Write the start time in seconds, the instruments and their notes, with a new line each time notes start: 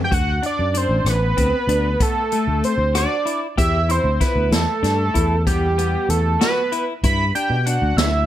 0.04 analog synth lead G5
0.11 fretless electric bass D2, clean electric guitar F#4, analog synth lead F#5, kick, closed hi-hat
0.43 clean electric guitar D4, analog synth lead D5, closed hi-hat
0.59 fretless electric bass F#2
0.74 clean electric guitar D4, analog synth lead C5, closed hi-hat
0.89 fretless electric bass A1
1.05 fretless electric bass A1, cross-stick, closed hi-hat
1.10 analog synth lead B4
1.37 fretless electric bass D2, clean electric guitar C4, kick, closed hi-hat
1.67 fretless electric bass D2, clean electric guitar D4, closed hi-hat
2.00 clean electric guitar B3, analog synth lead A4, kick, closed hi-hat
2.32 clean electric guitar A3, closed hi-hat
2.48 fretless electric bass D2
2.64 analog synth lead C5, closed hi-hat
2.78 fretless electric bass D2
2.95 clean electric guitar F#4, analog synth lead D5, cross-stick, closed hi-hat
3.26 clean electric guitar E4, closed hi-hat
3.58 fretless electric bass E2, clean electric guitar G4, analog synth lead E5, kick, closed hi-hat
3.89 clean electric guitar E4, analog synth lead C5, closed hi-hat
4.04 fretless electric bass D2
4.20 clean electric guitar E4, analog synth lead B4, kick, snare, closed hi-hat
4.36 fretless electric bass D2
4.51 fretless electric bass E2, analog synth lead A4, snare, closed hi-hat
4.83 fretless electric bass G2, clean electric guitar D4, snare, closed hi-hat
5.14 fretless electric bass E2, clean electric guitar E4, kick, closed hi-hat
5.47 clean electric guitar B3, analog synth lead G4, kick, closed hi-hat
5.78 clean electric guitar B3, closed hi-hat
6.09 fretless electric bass E2, analog synth lead A4, closed hi-hat
6.41 clean electric guitar F#4, analog synth lead B4, snare, closed hi-hat
6.72 clean electric guitar E4, closed hi-hat
7.04 fretless electric bass G2, clean electric guitar E4, analog synth lead B5, kick, closed hi-hat
7.35 clean electric guitar D4, analog synth lead G5, closed hi-hat
7.50 fretless electric bass B2
7.66 clean electric guitar D4, analog synth lead F#5, closed hi-hat
7.82 fretless electric bass D2
7.96 fretless electric bass D2, analog synth lead E5, snare, closed hi-hat